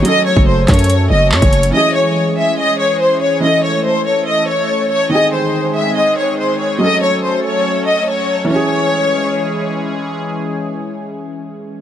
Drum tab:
HH |x-----------xxxxx---------x-x-x-|--------------------------------|--------------------------------|--------------------------------|
CP |------------x-----------x-------|--------------------------------|--------------------------------|--------------------------------|
BD |------o-----o-------------o-----|--------------------------------|--------------------------------|--------------------------------|

HH |--------------------------------|--------------------------------|--------------------------------|
CP |--------------------------------|--------------------------------|--------------------------------|
BD |--------------------------------|--------------------------------|--------------------------------|